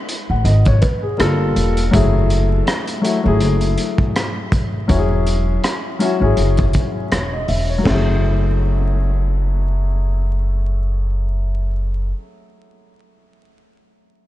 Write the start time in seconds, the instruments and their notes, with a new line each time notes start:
0.09 closed hi-hat
0.30 upright bass A1, upright piano F#5
0.45 upright bass G#1, upright piano D#5, closed hi-hat
0.65 upright piano C#5, kick, closed hi-hat
0.82 upright piano B4, kick, closed hi-hat
1.03 upright piano G#4
1.17 upright bass G1, upright piano G3 A#3 F4 A4, cross-stick, closed hi-hat
1.56 upright bass E1, closed hi-hat
1.77 closed hi-hat
1.91 upright bass F#1, upright piano F#3 A3 E4 G#4, kick, closed hi-hat
2.30 closed hi-hat
2.67 cross-stick, closed hi-hat
2.88 closed hi-hat
3.01 upright piano F#3 A3 E4 F#4, closed hi-hat
3.23 upright bass G#1, upright piano F#3 A3 E4 G#4
3.40 upright bass F#1, closed hi-hat
3.61 closed hi-hat
3.78 closed hi-hat
3.98 kick
4.16 cross-stick, closed hi-hat
4.52 kick, closed hi-hat
4.88 upright bass E1, upright piano F#3 C#4 E4 F#4, kick, closed hi-hat
4.98 upright piano G#4
5.26 closed hi-hat
5.64 cross-stick, closed hi-hat
5.99 upright piano F#3 C#4 E4 F#4, closed hi-hat
6.20 upright bass G#1, upright piano F#3 C#4 E4 G#4
6.37 upright bass F#1, closed hi-hat
6.57 kick, closed hi-hat
6.73 kick, closed hi-hat
7.12 upright bass E1, upright piano C#5, cross-stick, closed hi-hat
7.33 upright piano D#5
7.48 upright bass E1, upright piano E5, open hi-hat
7.69 upright piano C#5
7.78 upright piano F#3
7.83 upright bass F#1, upright piano A3, kick, snare, china
7.88 upright piano E4
7.93 upright piano G#4